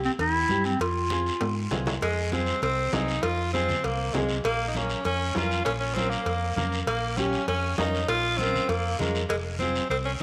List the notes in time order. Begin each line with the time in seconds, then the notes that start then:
Already playing: C4 E4 G4
0.04 C4, short guiro
0.19 E2 E4, cowbell, high conga, long guiro
0.49 G2 C4 E4 G4, high conga, short guiro
0.64 C4, short guiro
0.80 F2 F4, cowbell, high conga, long guiro
1.10 C4 F4 G#4, high conga, short guiro
1.26 short guiro
1.41 G#2, cowbell, high conga, high timbale, long guiro
1.71 C2 C4 F4 G#4, high conga, low conga, low timbale, short guiro
1.86 low conga, low timbale, short guiro
2.01 F2 G#3, cowbell, high conga, long guiro
2.32 C4 F4 G#4, high conga, short guiro
2.46 short guiro
2.62 C2 C4, cowbell, high conga, long guiro
2.92 C2 C4 D#4 F4 G#4, high conga, low timbale, short guiro
3.08 short guiro
3.22 F2 F4, cowbell, high conga, long guiro
3.53 C4 F4 G#4, high conga, short guiro
3.69 low conga, short guiro
3.84 C2 A#3, cowbell, long guiro
4.13 C2 G#3 C4 F4 G#4, high conga, low conga, low timbale, short guiro
4.29 short guiro
4.44 A#1 A#3, cowbell, high conga, long guiro
4.68 D#4
4.74 C#4 F4 A#4, high conga, short guiro
4.89 short guiro
5.05 F2 C#4, cowbell, high conga, long guiro
5.35 F2 C#4 F4 A#4, high conga, low timbale, short guiro
5.51 short guiro
5.65 A#1 C#4, cowbell, long guiro
5.80 C#4
5.94 C4 C#4 F4 A#4, high conga, short guiro
6.09 A#3, short guiro
6.26 F2, cowbell, high conga, long guiro
6.56 F2 A#3 C#4 F4 A#4, high conga, low conga, short guiro
6.72 short guiro
6.86 A#1 A#3, cowbell, high conga, long guiro
7.17 C#4 F4 G4, high conga, short guiro
7.33 short guiro
7.48 F2 C#4, cowbell, high conga, long guiro
7.78 F2 C#4 D#4 F4 A#4, high conga, low timbale, short guiro
7.95 short guiro
8.08 A#1 F4, cowbell, high conga, long guiro
8.38 C4 C#4 F4 A#4, high conga, short guiro
8.53 low conga, short guiro
8.68 F2 A#3, cowbell, high conga, long guiro
8.98 F2 G#3 C#4 F4 A#4, high conga, low conga, short guiro
9.15 short guiro
9.29 F1 G#3, cowbell, high conga, long guiro
9.59 C4 F4 G#4, high conga, short guiro
9.75 short guiro
9.90 C2 C4, cowbell, high conga, long guiro
10.05 C#4